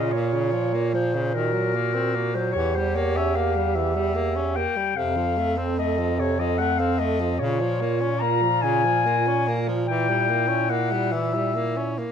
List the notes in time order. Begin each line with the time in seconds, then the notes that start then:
Already playing: A#2 C#3 F4 D#5
0.11 A#2 C#5
0.33 C#3
0.52 F3
0.73 A#3
0.94 F3 C5
1.14 C#3
1.34 D#3 F#4 A#4
1.53 F#3
1.74 A#3
1.94 C4
2.15 A#3
2.34 F#3 C5
2.52 E2 E3 G4 C#5
2.75 G3 C5
2.95 A#3 C#5
3.16 C#4 E5
3.36 A#3 F5
3.56 G3
3.75 E3 E5
3.95 G3
4.15 A#3
4.36 C#4
4.55 A#3 G5
4.76 G3
4.95 F2 C3 A4 F5
5.16 F3
5.37 A3
5.57 C4
5.78 A3 D#5
5.98 F3
6.19 C3 C#5
6.39 F3 D#5
6.58 A3 F#5
6.78 C4 F5
6.98 A3 D#5
7.20 F3
7.39 A#2 C#3 F4 C#5
7.60 F3
7.81 A#3
8.01 C#4
8.20 A#3 A#5
8.42 F3
8.62 C#3 G#5
8.85 F3
9.05 A#3
9.27 C#4
9.48 A#3
9.68 F3
9.87 E3 E4 G5
10.09 G3
10.29 A#3
10.48 C#4
10.70 A#3 F#5
10.91 G3
11.12 E3 E5
11.34 G3
11.55 A#3
11.77 C#4
11.98 A#3